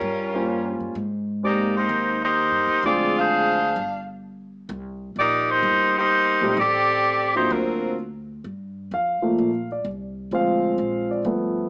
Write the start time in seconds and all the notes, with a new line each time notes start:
Already playing: G3 C#4 F4 A#4
0.01 G2
0.34 G3 A#3 C#4 F4 C5
0.80 G2
0.95 G#2
1.43 G#3 A#3 C4 D#4 G4 D5
1.77 A#3 D#4 G4 C5
1.89 D#2
2.24 A#3 D#4 G4 C5
2.51 G2
2.67 D#2
2.83 D2 F3 G#3 C4 D4 F4 G#4 D5
3.18 D4 G#4 C5 F5
3.76 G1
4.69 C2
5.16 A#1 A#3 D#4 G4 D5
5.50 A#3 D#4 G4 C5
5.62 G1
5.98 A#3 D#4 G4 C5
6.41 A#1 G3 A3 C4 D#4 G4
6.57 A1 C4 G4 A4 D5
7.35 F#3 A3 A#3 C4 D4 D#4 F4 G4 C5
7.50 D2 F#3 C4 F4 A#4
8.44 G2
8.91 F2 F5
9.22 F3 A3 A#3, muted upright bass stroke
9.38 A#1
9.72 D5
9.84 C2
10.31 D2 F3 G#3 C4 F5
10.78 A#1
11.11 D5
11.24 G1 F3 A3 B3